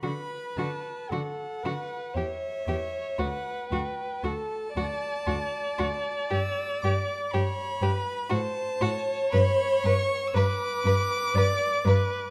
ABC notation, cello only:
X:1
M:3/4
L:1/8
Q:1/4=58
K:D
V:1 name="Cello" clef=bass
D, D, D, D, E,, E,, | D,, D,, D,, D,, D,, D,, | G,, G,, G,, G,, A,, A,, | G,, G,, G,, G,, G,, G,, |]